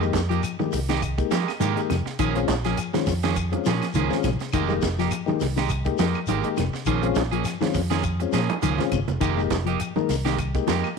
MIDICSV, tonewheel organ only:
0, 0, Header, 1, 2, 480
1, 0, Start_track
1, 0, Key_signature, -4, "minor"
1, 0, Tempo, 585366
1, 1799, Time_signature, 4, 2, 24, 8
1, 9008, End_track
2, 0, Start_track
2, 0, Title_t, "Tonewheel organ"
2, 0, Program_c, 0, 16
2, 9, Note_on_c, 0, 56, 97
2, 12, Note_on_c, 0, 63, 81
2, 13, Note_on_c, 0, 67, 97
2, 15, Note_on_c, 0, 58, 81
2, 174, Note_off_c, 0, 56, 0
2, 175, Note_off_c, 0, 63, 0
2, 175, Note_off_c, 0, 67, 0
2, 177, Note_off_c, 0, 58, 0
2, 490, Note_on_c, 0, 56, 76
2, 490, Note_on_c, 0, 58, 73
2, 493, Note_on_c, 0, 67, 78
2, 494, Note_on_c, 0, 63, 71
2, 654, Note_off_c, 0, 58, 0
2, 655, Note_off_c, 0, 56, 0
2, 656, Note_off_c, 0, 63, 0
2, 656, Note_off_c, 0, 67, 0
2, 964, Note_on_c, 0, 56, 68
2, 965, Note_on_c, 0, 63, 67
2, 966, Note_on_c, 0, 58, 66
2, 966, Note_on_c, 0, 67, 83
2, 1132, Note_off_c, 0, 56, 0
2, 1132, Note_off_c, 0, 63, 0
2, 1133, Note_off_c, 0, 58, 0
2, 1133, Note_off_c, 0, 67, 0
2, 1445, Note_on_c, 0, 56, 75
2, 1445, Note_on_c, 0, 67, 89
2, 1447, Note_on_c, 0, 63, 67
2, 1449, Note_on_c, 0, 58, 70
2, 1612, Note_off_c, 0, 56, 0
2, 1612, Note_off_c, 0, 67, 0
2, 1614, Note_off_c, 0, 58, 0
2, 1614, Note_off_c, 0, 63, 0
2, 1931, Note_on_c, 0, 56, 87
2, 1932, Note_on_c, 0, 60, 83
2, 1933, Note_on_c, 0, 61, 86
2, 1936, Note_on_c, 0, 65, 105
2, 2096, Note_off_c, 0, 56, 0
2, 2096, Note_off_c, 0, 60, 0
2, 2097, Note_off_c, 0, 61, 0
2, 2098, Note_off_c, 0, 65, 0
2, 2405, Note_on_c, 0, 56, 76
2, 2407, Note_on_c, 0, 65, 83
2, 2408, Note_on_c, 0, 60, 79
2, 2408, Note_on_c, 0, 61, 73
2, 2572, Note_off_c, 0, 56, 0
2, 2574, Note_off_c, 0, 60, 0
2, 2574, Note_off_c, 0, 61, 0
2, 2574, Note_off_c, 0, 65, 0
2, 2883, Note_on_c, 0, 56, 67
2, 2885, Note_on_c, 0, 65, 79
2, 2886, Note_on_c, 0, 60, 68
2, 2890, Note_on_c, 0, 61, 69
2, 3051, Note_off_c, 0, 56, 0
2, 3052, Note_off_c, 0, 65, 0
2, 3053, Note_off_c, 0, 60, 0
2, 3055, Note_off_c, 0, 61, 0
2, 3361, Note_on_c, 0, 56, 71
2, 3362, Note_on_c, 0, 61, 70
2, 3362, Note_on_c, 0, 65, 94
2, 3364, Note_on_c, 0, 60, 72
2, 3530, Note_off_c, 0, 56, 0
2, 3531, Note_off_c, 0, 61, 0
2, 3531, Note_off_c, 0, 65, 0
2, 3532, Note_off_c, 0, 60, 0
2, 3842, Note_on_c, 0, 56, 102
2, 3842, Note_on_c, 0, 63, 82
2, 3844, Note_on_c, 0, 58, 83
2, 3844, Note_on_c, 0, 67, 94
2, 4011, Note_off_c, 0, 56, 0
2, 4011, Note_off_c, 0, 58, 0
2, 4011, Note_off_c, 0, 63, 0
2, 4012, Note_off_c, 0, 67, 0
2, 4314, Note_on_c, 0, 63, 75
2, 4315, Note_on_c, 0, 56, 90
2, 4315, Note_on_c, 0, 67, 86
2, 4316, Note_on_c, 0, 58, 72
2, 4486, Note_off_c, 0, 63, 0
2, 4487, Note_off_c, 0, 56, 0
2, 4487, Note_off_c, 0, 58, 0
2, 4487, Note_off_c, 0, 67, 0
2, 4797, Note_on_c, 0, 63, 74
2, 4799, Note_on_c, 0, 56, 73
2, 4801, Note_on_c, 0, 58, 58
2, 4801, Note_on_c, 0, 67, 71
2, 4968, Note_off_c, 0, 63, 0
2, 4969, Note_off_c, 0, 56, 0
2, 4969, Note_off_c, 0, 58, 0
2, 4970, Note_off_c, 0, 67, 0
2, 5282, Note_on_c, 0, 67, 88
2, 5285, Note_on_c, 0, 56, 76
2, 5286, Note_on_c, 0, 58, 66
2, 5286, Note_on_c, 0, 63, 76
2, 5450, Note_off_c, 0, 67, 0
2, 5451, Note_off_c, 0, 56, 0
2, 5452, Note_off_c, 0, 58, 0
2, 5452, Note_off_c, 0, 63, 0
2, 5763, Note_on_c, 0, 56, 94
2, 5765, Note_on_c, 0, 60, 84
2, 5766, Note_on_c, 0, 61, 81
2, 5766, Note_on_c, 0, 65, 108
2, 5930, Note_off_c, 0, 56, 0
2, 5931, Note_off_c, 0, 60, 0
2, 5931, Note_off_c, 0, 61, 0
2, 5931, Note_off_c, 0, 65, 0
2, 6242, Note_on_c, 0, 60, 66
2, 6243, Note_on_c, 0, 56, 77
2, 6245, Note_on_c, 0, 61, 73
2, 6247, Note_on_c, 0, 65, 91
2, 6410, Note_off_c, 0, 56, 0
2, 6410, Note_off_c, 0, 60, 0
2, 6411, Note_off_c, 0, 61, 0
2, 6412, Note_off_c, 0, 65, 0
2, 6734, Note_on_c, 0, 56, 75
2, 6735, Note_on_c, 0, 60, 70
2, 6736, Note_on_c, 0, 65, 86
2, 6738, Note_on_c, 0, 61, 63
2, 6895, Note_off_c, 0, 56, 0
2, 6896, Note_off_c, 0, 60, 0
2, 6896, Note_off_c, 0, 65, 0
2, 6897, Note_off_c, 0, 61, 0
2, 7215, Note_on_c, 0, 65, 96
2, 7216, Note_on_c, 0, 60, 73
2, 7220, Note_on_c, 0, 61, 75
2, 7222, Note_on_c, 0, 56, 85
2, 7376, Note_off_c, 0, 60, 0
2, 7376, Note_off_c, 0, 65, 0
2, 7378, Note_off_c, 0, 61, 0
2, 7379, Note_off_c, 0, 56, 0
2, 7684, Note_on_c, 0, 67, 99
2, 7686, Note_on_c, 0, 58, 77
2, 7686, Note_on_c, 0, 63, 81
2, 7687, Note_on_c, 0, 56, 89
2, 7850, Note_off_c, 0, 67, 0
2, 7851, Note_off_c, 0, 58, 0
2, 7851, Note_off_c, 0, 63, 0
2, 7852, Note_off_c, 0, 56, 0
2, 8167, Note_on_c, 0, 58, 69
2, 8167, Note_on_c, 0, 70, 87
2, 8168, Note_on_c, 0, 56, 77
2, 8172, Note_on_c, 0, 63, 75
2, 8332, Note_off_c, 0, 58, 0
2, 8332, Note_off_c, 0, 70, 0
2, 8333, Note_off_c, 0, 56, 0
2, 8335, Note_off_c, 0, 63, 0
2, 8648, Note_on_c, 0, 63, 56
2, 8649, Note_on_c, 0, 56, 68
2, 8649, Note_on_c, 0, 58, 72
2, 8650, Note_on_c, 0, 67, 83
2, 8813, Note_off_c, 0, 58, 0
2, 8813, Note_off_c, 0, 63, 0
2, 8814, Note_off_c, 0, 56, 0
2, 8814, Note_off_c, 0, 67, 0
2, 9008, End_track
0, 0, End_of_file